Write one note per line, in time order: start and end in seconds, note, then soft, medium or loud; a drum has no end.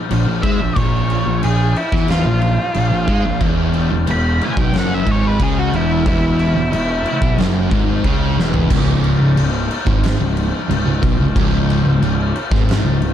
0.10 0.26 A#1 medium
0.10 0.26 A#2 medium
0.10 crash medium
0.27 0.42 A#1 medium
0.27 0.44 A#2 medium
0.42 0.59 G#2 loud
0.42 0.60 G#3 medium
0.42 0.77 E5 medium
0.42 kick loud
0.42 crash medium
0.60 0.75 A#1 medium
0.60 0.75 A#2 medium
0.76 1.23 A#1 medium
0.76 1.25 A#2 loud
0.76 1.41 C#5 medium
0.76 kick loud
0.76 crash medium
1.10 crash medium
1.26 1.42 A#1 medium
1.26 1.43 A#2 medium
1.43 1.74 A#1 medium
1.43 1.70 A#2 medium
1.43 1.76 G#4 loud
1.43 crash medium
1.76 2.09 E4 medium
1.76 crash medium
1.92 2.24 E2 medium
1.92 2.25 E3 loud
1.92 kick loud
1.92 snare soft
2.08 3.39 F4 loud
2.08 snare loud
2.08 crash medium
2.25 2.57 A#1 medium
2.25 2.52 A#2 medium
2.42 crash medium
2.74 2.90 A#1 medium
2.74 2.90 A#2 medium
2.74 crash medium
2.90 3.07 A#1 medium
2.90 3.09 A#2 medium
3.08 3.24 G#2 loud
3.08 3.25 G#3 medium
3.08 kick loud
3.08 crash medium
3.24 3.40 A#1 medium
3.24 3.41 A#2 medium
3.41 3.88 E1 medium
3.41 3.90 E2 loud
3.41 kick loud
3.41 crash medium
3.74 crash medium
3.91 4.07 E1 medium
3.91 4.07 E2 medium
4.07 4.39 E1 medium
4.07 4.35 E2 medium
4.07 4.42 B5 loud
4.07 crash medium
4.42 4.59 G#5 medium
4.42 crash medium
4.56 4.73 B1 loud
4.56 4.73 B2 loud
4.56 kick loud
4.61 4.76 G5 medium
4.73 5.05 F#1 loud
4.73 5.06 F#2 loud
4.73 snare loud
4.73 crash medium
4.78 4.94 F#5 loud
4.94 5.09 E5 medium
5.06 5.38 G#1 loud
5.06 5.39 G#2 loud
5.06 kick medium
5.06 crash medium
5.11 5.28 C#5 medium
5.28 5.42 B4 loud
5.40 5.71 C#2 loud
5.40 5.73 C#3 loud
5.40 5.58 G#4 loud
5.40 kick loud
5.40 crash medium
5.59 5.75 F#4 medium
5.72 6.04 E1 loud
5.72 6.05 E2 medium
5.72 6.07 E4 medium
5.72 crash medium
6.06 6.53 E1 loud
6.06 6.56 E2 loud
6.06 7.36 E4 loud
6.06 kick loud
6.06 crash medium
6.39 crash medium
6.55 6.71 E1 medium
6.55 6.72 E2 medium
6.72 7.04 E1 medium
6.72 7.00 E2 medium
6.72 crash medium
7.06 crash medium
7.22 7.38 B1 loud
7.22 7.38 B2 loud
7.22 kick loud
7.38 7.70 F#1 loud
7.38 7.71 F#2 loud
7.38 snare loud
7.38 crash medium
7.71 8.03 G#1 loud
7.71 8.05 G#2 loud
7.71 kick loud
7.71 crash medium
8.04 8.36 C#2 loud
8.04 8.38 C#3 loud
8.04 kick loud
8.04 crash medium
8.37 8.69 E1 loud
8.37 8.71 E2 loud
8.37 snare medium
8.54 floor tom loud
8.70 9.17 C#1 medium
8.70 9.20 C#2 loud
8.70 kick loud
8.70 crash loud
8.70 crash medium
9.04 crash medium
9.20 9.36 C#1 medium
9.20 9.36 C#2 medium
9.37 9.68 C#1 medium
9.37 9.64 C#2 medium
9.37 crash medium
9.71 crash medium
9.87 10.18 G#1 loud
9.87 10.20 G#2 loud
9.87 kick loud
10.04 snare loud
10.04 crash medium
10.19 10.51 C#1 medium
10.19 10.47 C#2 medium
10.37 crash medium
10.69 10.85 C#1 medium
10.69 10.86 C#2 medium
10.69 crash medium
10.85 11.01 C#1 medium
10.85 11.04 C#2 medium
11.02 11.17 B1 loud
11.02 11.19 B2 loud
11.02 kick loud
11.02 crash medium
11.17 11.34 C#1 medium
11.17 11.35 C#2 medium
11.36 11.82 C#1 medium
11.36 11.85 C#2 loud
11.36 kick loud
11.36 crash medium
11.70 crash medium
11.84 12.00 C#1 medium
11.84 12.03 C#2 medium
12.01 12.32 C#1 medium
12.01 12.29 C#2 medium
12.01 crash medium
12.36 crash medium
12.51 12.82 G#1 loud
12.51 12.84 G#2 loud
12.51 kick loud
12.55 snare soft
12.69 snare loud
12.69 crash medium
12.83 13.14 C#1 medium
12.83 13.12 C#2 medium
13.02 crash medium